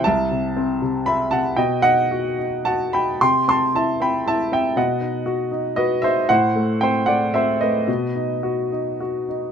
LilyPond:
\new Staff \with { instrumentName = "Grand piano" } { \time 3/4 \key b \phrygian \tempo 4 = 114 << { <e'' a''>2 <e'' b''>8 <fis'' a''>8 | <dis'' g''>8 <dis'' fis''>4. <fis'' a''>8 <g'' b''>8 | <g'' c'''>8 <a'' c'''>8 <e'' a''>8 <g'' b''>8 <e'' a''>8 <e'' g''>8 | <dis'' fis''>4 r4 <b' dis''>8 <c'' e''>8 |
<c'' fis''>4 <c'' g''>8 <d'' fis''>8 <c'' e''>8 <b' dis''>8~ | <b' dis''>2~ <b' dis''>8 r8 | } \\ { c,8 c8 c'8 c8 c'8 c8 | b,8 dis'8 fis'8 dis'8 fis'8 dis'8 | c8 c'8 e'8 c'8 e'8 c'8 | b,8 dis'8 fis'8 dis'8 fis'8 dis'8 |
a,8 a8 c'8 a8 c'8 a8 | b,8 dis'8 fis'8 dis'8 fis'8 dis'8 | } >> }